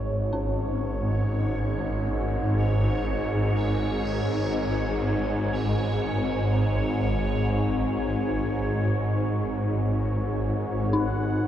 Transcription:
Already playing: synth drone G#1 G#2, ambient pad G#3 D#4 G#4, synth bell G#4, synth texture C#5
0.33 synth bell C#4
10.92 synth drone G#1 G#2, synth bell D#4, synth texture F#5

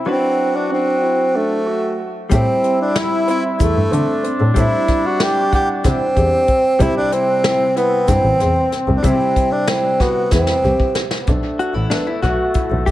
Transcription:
0.06 hollow-body jazz guitar F#3 E4 B4, tenor saxophone C4, grand piano D4, flugelhorn F#4
0.55 tenor saxophone D4
0.70 tenor saxophone C4, grand piano D4
1.02 grand piano E4
1.34 tenor saxophone A3, grand piano D4
1.66 grand piano F#4
2.29 double bass A2, hollow-body jazz guitar G3 C4 E4, tenor saxophone C4, flugelhorn E4, grand piano G4, kick, closed hi-hat, shaker
2.62 grand piano C4, closed hi-hat
2.81 tenor saxophone D4
2.95 grand piano E4, tenor saxophone E4, snare, closed hi-hat
3.27 grand piano C4, tenor saxophone E4, closed hi-hat
3.59 double bass E2, tenor saxophone A3, grand piano E4, kick, closed hi-hat, shaker
3.75 double bass G2
3.91 double bass D3, grand piano C4, flugelhorn D4, closed hi-hat
4.23 grand piano C4, closed hi-hat
4.40 double bass A2
4.54 double bass A2, hollow-body jazz guitar G3 C4 E4, grand piano E4, tenor saxophone E4, kick, closed hi-hat, shaker
4.88 kick, snare, closed hi-hat
5.06 tenor saxophone F#4
5.20 grand piano E4, tenor saxophone G4, snare, closed hi-hat
5.53 tenor saxophone G4, grand piano F#5, kick, closed hi-hat
5.84 double bass C3, tenor saxophone C4, grand piano E4, kick, snare, closed hi-hat, shaker
6.16 double bass E2, grand piano G4, kick, closed hi-hat
6.48 kick, closed hi-hat
6.79 double bass C2, hollow-body jazz guitar C3 G3 E4, flugelhorn C4, tenor saxophone E4, grand piano G4, kick, closed hi-hat, shaker
6.97 tenor saxophone D4
7.12 grand piano C4, tenor saxophone C4, closed hi-hat
7.44 grand piano E4, snare, closed hi-hat
7.76 tenor saxophone B3, grand piano E4, closed hi-hat
8.08 double bass G2, tenor saxophone C4, grand piano E4, kick, snare, closed hi-hat, shaker
8.23 double bass A1
8.40 double bass E2, grand piano C4, snare, closed hi-hat
8.72 grand piano C4, snare, closed hi-hat
8.87 double bass C2
8.96 tenor saxophone D4
9.03 hollow-body jazz guitar C3 G3 E4, double bass C3, tenor saxophone C4, grand piano E4, kick, closed hi-hat, shaker
9.36 kick, closed hi-hat
9.52 tenor saxophone D4
9.68 tenor saxophone C4, grand piano E4, snare, closed hi-hat
10.00 tenor saxophone B3, grand piano F#4, kick, snare, closed hi-hat
10.31 double bass E2, tenor saxophone C4, grand piano E4, kick, snare, shaker
10.47 snare
10.64 double bass C2, grand piano G4, shaker
10.80 kick
10.95 snare
11.11 snare
11.20 flugelhorn B3
11.27 double bass B1, flugelhorn A3, grand piano D4, kick, closed hi-hat
11.59 hollow-body jazz guitar F#4, closed hi-hat
11.74 double bass A1, hollow-body jazz guitar E4
11.90 grand piano B3, hollow-body jazz guitar D4, snare, closed hi-hat
12.07 hollow-body jazz guitar E4
12.22 double bass B1, hollow-body jazz guitar F#4, grand piano F#4, kick, closed hi-hat
12.54 grand piano E4, kick, closed hi-hat
12.70 double bass B1
12.86 grand piano D4, hollow-body jazz guitar G4, kick, closed hi-hat

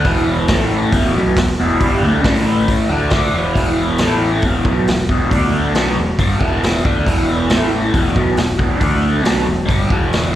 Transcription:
0.04 picked electric bass E1, overdriven electric guitar E2 B2 E3, kick, open hi-hat
0.48 picked electric bass A1, overdriven electric guitar A2 E3 A3, kick, snare, open hi-hat
0.92 picked electric bass E1, overdriven electric guitar E2 B2 E3, kick, open hi-hat
1.14 picked electric bass B1, overdriven electric guitar B2 F#3 B3
1.36 picked electric bass E1, overdriven electric guitar E2 B2, kick, snare, open hi-hat
1.58 picked electric bass E1, overdriven electric guitar E2 B2 E3
1.81 picked electric bass G1, overdriven electric guitar G2 D3 G3, kick, open hi-hat
2.02 picked electric bass D2, overdriven electric guitar D3 A3 D4
2.24 picked electric bass A1, overdriven electric guitar A2 E3 A3, kick, snare, open hi-hat
2.68 kick, open hi-hat
2.89 picked electric bass D2, overdriven electric guitar D3 A3 D4
3.10 picked electric bass D2, overdriven electric guitar D3 A3 D4, kick, snare, open hi-hat
3.34 picked electric bass E1, overdriven electric guitar E2 B2 E3
3.56 picked electric bass E1, overdriven electric guitar E2 B2 E3, kick, open hi-hat
3.98 picked electric bass A1, overdriven electric guitar A2, snare, open hi-hat
4.02 overdriven electric guitar E3 A3
4.42 picked electric bass E1, overdriven electric guitar E2 B2, kick, open hi-hat
4.47 overdriven electric guitar E3
4.65 picked electric bass B1, overdriven electric guitar B2 F#3, kick
4.69 overdriven electric guitar B3
4.85 picked electric bass E1, overdriven electric guitar E2 B2, snare, open hi-hat
5.09 picked electric bass E1, overdriven electric guitar E2 B2 E3, kick
5.31 picked electric bass D2, overdriven electric guitar D3 A3 D4, kick, open hi-hat
5.74 picked electric bass B1, overdriven electric guitar B2 F#3 B3, snare, open hi-hat
5.96 picked electric bass E1, overdriven electric guitar E2 B2
6.18 picked electric bass G1, overdriven electric guitar G2 D3 G3, kick, open hi-hat
6.39 picked electric bass E1, overdriven electric guitar E2 B2 E3, kick
6.63 snare, open hi-hat
6.84 picked electric bass D2, overdriven electric guitar D3 A3 D4, kick
7.07 picked electric bass E1, overdriven electric guitar E2 B2 E3, kick, open hi-hat
7.49 picked electric bass A1, overdriven electric guitar A2 E3 A3, snare, open hi-hat
7.93 picked electric bass E1, overdriven electric guitar E2 B2 E3, kick, open hi-hat
8.14 picked electric bass B1, overdriven electric guitar B2 F#3 B3, kick
8.37 picked electric bass E1, overdriven electric guitar E2 B2, snare, open hi-hat
8.58 picked electric bass E1, overdriven electric guitar E2 B2 E3, kick
8.78 picked electric bass D2, overdriven electric guitar D3 A3 D4, kick, open hi-hat
9.23 picked electric bass B1, overdriven electric guitar B2 F#3 B3, snare, open hi-hat
9.44 picked electric bass E1, overdriven electric guitar E2 B2
9.65 picked electric bass G1, overdriven electric guitar G2 D3 G3, kick
9.70 open hi-hat
9.88 picked electric bass E1, overdriven electric guitar E2 B2 E3, kick
10.13 snare, open hi-hat

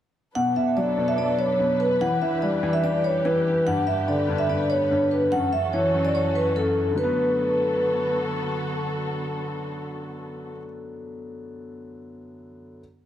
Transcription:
0.35 grand piano B2, string section F#3 D4 A4 B4, vibraphone F#5
0.56 grand piano B2, vibraphone E5
0.77 grand piano F#3, vibraphone D5
0.98 grand piano B2
1.08 vibraphone E5
1.18 grand piano B2, vibraphone D5
1.39 vibraphone C#5
1.60 grand piano B2
1.80 vibraphone B4
2.01 grand piano E3, string section E3 D4 G4, vibraphone F#5
2.22 grand piano E3, vibraphone E5
2.42 grand piano G3, vibraphone D5
2.63 grand piano E3
2.73 vibraphone E5
2.84 grand piano E3, vibraphone D5
3.04 vibraphone C#5
3.25 grand piano E3, vibraphone B4
3.66 grand piano G2, string section D3 B3 B4, vibraphone F#5
3.87 grand piano G2, vibraphone E5
4.08 grand piano D3, vibraphone D5
4.29 grand piano G2
4.38 vibraphone E5
4.49 grand piano G2, vibraphone D5
4.70 vibraphone C#5
4.91 grand piano G2
5.11 vibraphone B4
5.32 grand piano F#2, string section E3 C#4 F#4 A4, vibraphone F#5
5.53 grand piano F#2, vibraphone E5
5.73 grand piano E3, vibraphone C#5
5.94 grand piano F#2
6.05 vibraphone D5
6.15 grand piano F#2, vibraphone C#5
6.35 vibraphone B4
6.56 grand piano F#2, vibraphone A4
6.92 grand piano D3
6.96 string section D3 B3 F#4 A4, grand piano F#3 A3, vibraphone B4
7.04 grand piano B3

